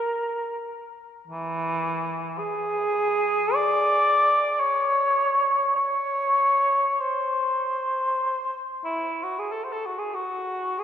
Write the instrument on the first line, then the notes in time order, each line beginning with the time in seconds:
cor anglais
Already playing: A#4
1.27 E3
2.39 G#4
3.55 D5
4.60 C#5
5.76 C#5
7.01 C5
8.85 E4
9.23 F#4
9.39 G#4
9.52 A4
9.64 C5
9.72 A4
9.86 F#4
9.99 G#4
10.14 F#4
10.79 G#4